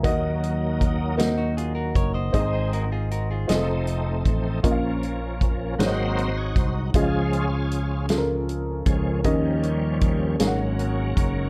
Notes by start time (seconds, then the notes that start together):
Already playing: F#3 A#3
0.03 D#2 D#3 F#3 A#3 D#4 F#4 D#5, kick, closed hi-hat
0.43 closed hi-hat
0.81 kick, closed hi-hat
1.18 A#3 C4 D#4 F#4 D#5, snare, closed hi-hat
1.38 D#4 F#4
1.57 F4 G#4, closed hi-hat
1.75 F#4 A#4
1.95 F#1 A#4 C#5, kick, closed hi-hat
2.14 C5 D#5
2.33 G#1 G#2 G#3 C4 D#4 G#4 C5 D#5, kick, closed hi-hat
2.53 G#4 C5
2.73 F#4 A#4, closed hi-hat
2.92 F4 G#4
3.11 F#4 A#4, closed hi-hat
3.31 F4 G#4
3.47 F1 F3 A3 C4 D#4 F4 G#4 D#5, snare, closed hi-hat
3.55 A4
3.87 closed hi-hat
4.25 A1, kick, closed hi-hat
4.63 A#1 A#2 F3 A#3 C#4 F4 A#4 D#5, kick, closed hi-hat
4.71 F5
5.03 closed hi-hat
5.41 kick, closed hi-hat
5.78 G#1 G#2 F#3 G#3 A#3 C4 D#4 F#4 G#4 C5 C#5, snare, closed hi-hat
5.86 D#5
6.18 closed hi-hat
6.37 C#5
6.56 C2 C5, kick, closed hi-hat
6.94 C#2 C#3 F3 G#3 C#4 F4 G#4 D#5, kick, closed hi-hat
7.02 F5
7.33 closed hi-hat
7.71 closed hi-hat
8.09 C#4 F4 G#4 A4, snare, closed hi-hat
8.18 A#4
8.49 closed hi-hat
8.86 C#2 F3 G#3 C#4, kick, closed hi-hat
9.24 D#2 D#3 F3 G3 A#3 C#4 D#4 G4 A#4 D#5, kick, closed hi-hat
9.63 closed hi-hat
10.01 kick, closed hi-hat
10.39 G#1 G#2 F#3 G#3 A#3 C#4 F#4 G#4 A#4 F5, snare, closed hi-hat
10.47 F#5
10.79 closed hi-hat
11.17 F#1, kick, closed hi-hat